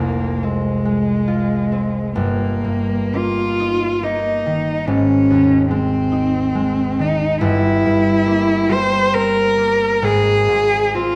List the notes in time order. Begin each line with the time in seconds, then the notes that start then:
Already playing: F1 G#3 A#3 C4
0.00 C2
0.43 G#3 C4
0.85 G#3
1.28 F4
1.72 C4
2.16 G1 A#3
2.64 G2
3.14 A#3 F4
3.60 D#4
4.03 A#3 D#4
4.46 D#3
4.87 G#1 C#4
5.30 D#2
5.71 G#3 C4
6.12 D#4
6.55 G#3
6.99 D#3 D#4
7.41 G1 E4
7.86 G2
8.27 A#3
8.69 G3 C5
9.14 C4 A#4
9.58 A#3
10.02 G#1 G#4
10.48 G#2
10.95 C4 F4